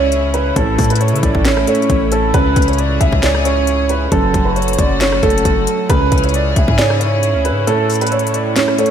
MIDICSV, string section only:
0, 0, Header, 1, 2, 480
1, 0, Start_track
1, 0, Tempo, 444444
1, 607, Time_signature, 4, 2, 24, 8
1, 9618, End_track
2, 0, Start_track
2, 0, Title_t, "String section"
2, 0, Program_c, 0, 48
2, 0, Note_on_c, 0, 49, 86
2, 0, Note_on_c, 0, 61, 76
2, 0, Note_on_c, 0, 64, 76
2, 0, Note_on_c, 0, 68, 92
2, 589, Note_off_c, 0, 49, 0
2, 589, Note_off_c, 0, 68, 0
2, 609, Note_on_c, 0, 57, 83
2, 2509, Note_off_c, 0, 57, 0
2, 2527, Note_on_c, 0, 68, 90
2, 2528, Note_on_c, 0, 49, 82
2, 4405, Note_off_c, 0, 64, 0
2, 4428, Note_off_c, 0, 49, 0
2, 4428, Note_off_c, 0, 68, 0
2, 4448, Note_on_c, 0, 66, 90
2, 4449, Note_on_c, 0, 57, 83
2, 6324, Note_off_c, 0, 61, 0
2, 6348, Note_off_c, 0, 66, 0
2, 6349, Note_off_c, 0, 57, 0
2, 6368, Note_on_c, 0, 49, 85
2, 6368, Note_on_c, 0, 61, 79
2, 6368, Note_on_c, 0, 64, 77
2, 6368, Note_on_c, 0, 68, 91
2, 8268, Note_off_c, 0, 49, 0
2, 8269, Note_off_c, 0, 68, 0
2, 8288, Note_on_c, 0, 57, 84
2, 9618, Note_off_c, 0, 57, 0
2, 9618, Note_off_c, 0, 61, 0
2, 9618, Note_off_c, 0, 64, 0
2, 9618, End_track
0, 0, End_of_file